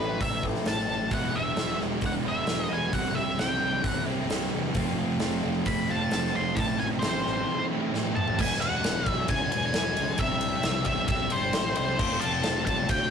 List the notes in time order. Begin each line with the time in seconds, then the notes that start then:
Already playing: A2 E3 A3 C4 E4
0.00 A1 E3 A3 B4
0.21 A1 E5, kick, open hi-hat
0.43 A2 E3 A3 C4 E4, kick
0.55 snare
0.65 A1 A2 E3 A3 C4 E4 A5, snare, open hi-hat
0.89 A1 A2 E3 A3 C4 E4
1.10 E1 E3 G#3 B3 E4 F#5, kick, open hi-hat
1.32 E1 G#3 B3 E4 E5
1.56 E1 E3 G#3 B3 E4, snare, open hi-hat
1.80 E1, snare
2.01 E1, kick, open hi-hat
2.06 F#5
2.24 E1 G#3 B3 E4
2.28 E5
2.47 E1 E3 G#3 B3 E4, snare, open hi-hat
2.62 D#5
2.69 E1 G#3 B3 E4 G#5
2.92 C2 C3 E3 G3 C4 E4 F#5, kick, open hi-hat
3.15 C2 G3 C4 E4 E5
3.38 C2 E3 G3 C4 E4 G5, snare, open hi-hat
3.63 C2
3.84 C2 F#5, kick, open hi-hat
4.06 G3 C4 E4
4.29 C2 C3 E3 G3 C4 E4, snare, open hi-hat
4.52 E2 G3 C4 E4
4.74 F1 F3 A3 C4 F4, kick, open hi-hat
4.98 F1 A3 C4 F4
5.20 F1 F3 A3 C4 F4, snare, open hi-hat
5.45 F1
5.66 F1 B5, kick, open hi-hat
5.89 F1 A3 C4 F4 A5
6.11 F1 F3 A3 C4 F4, snare, open hi-hat
6.34 F1 A3 C4 F4 C6
6.55 A1 A2 E3 A3 C4 E4 A5, kick, open hi-hat
6.80 A1 A3 C4 E4 G#5
6.99 E3 A3 C4 C5, snare, open hi-hat
7.03 A1 E4
7.26 A1, snare
7.70 A3 C4 E4
7.92 A2 E3 A3 C4 E4, snare
8.05 high tom
8.16 A3 C4 E4 A5, mid tom
8.28 floor tom
8.39 E1 E3 G#3 B3 E4 G#5, kick, crash
8.61 E1 G#3 B3 E4 F#5, ride
8.84 E1 E3 G#3 B3 E4, snare, ride
9.06 B1 G#3 B3 E4 E5, kick, ride
9.28 C#2 G#5, kick, ride
9.51 E1 G#3 B3 E4 G#5, ride
9.74 E1 E3 G#3 B3 E4, snare, ride
9.97 C#2, ride
10.18 C2 C3 E3 G3 C4 E4 E5, kick, ride
10.40 G3 C4 E4, ride
10.63 C2 C3 E3 G3 C4 E4, snare, ride
10.85 C2 G3 C4 E4 E5, kick, ride
11.08 C2 E5, kick, ride
11.30 G1 G3 C4 E4 C5, ride
11.53 A1 E3 G3 C4 E4, snare, ride
11.75 C2 C5, ride
11.98 F1 F3 A3 C4 F4, kick, crash
12.21 F1 A3 C4 F4 A5, ride
12.43 F1 F3 A3 C4 F4, snare, ride
12.66 C2 A3 C4 F4 A5, kick, ride
12.89 D2 G5, kick, ride